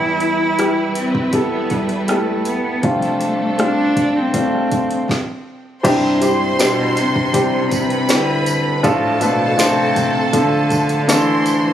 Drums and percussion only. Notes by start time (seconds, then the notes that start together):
0.20 closed hi-hat
0.59 cross-stick, closed hi-hat
0.95 closed hi-hat
1.15 kick
1.33 kick, closed hi-hat
1.70 kick, closed hi-hat
1.89 closed hi-hat
2.08 cross-stick, closed hi-hat
2.45 closed hi-hat
2.83 kick, closed hi-hat
3.02 closed hi-hat
3.21 closed hi-hat
3.59 cross-stick, closed hi-hat
3.96 kick, closed hi-hat
4.34 kick, closed hi-hat
4.55 cross-stick
4.72 kick, closed hi-hat
4.91 closed hi-hat
5.09 kick, snare
5.84 kick, closed hi-hat, crash, tambourine
6.22 closed hi-hat, tambourine
6.59 snare, closed hi-hat, tambourine
6.97 closed hi-hat, tambourine
7.16 kick
7.34 kick, closed hi-hat, tambourine
7.71 kick, closed hi-hat, tambourine
7.90 closed hi-hat
8.09 snare, closed hi-hat, tambourine
8.46 closed hi-hat, tambourine
8.84 kick, closed hi-hat, tambourine
9.21 closed hi-hat, tambourine
9.59 snare, closed hi-hat, tambourine
9.96 kick, closed hi-hat, tambourine
10.33 kick, closed hi-hat, tambourine
10.70 kick, closed hi-hat, tambourine
10.89 closed hi-hat
11.09 snare, closed hi-hat, tambourine
11.46 closed hi-hat, tambourine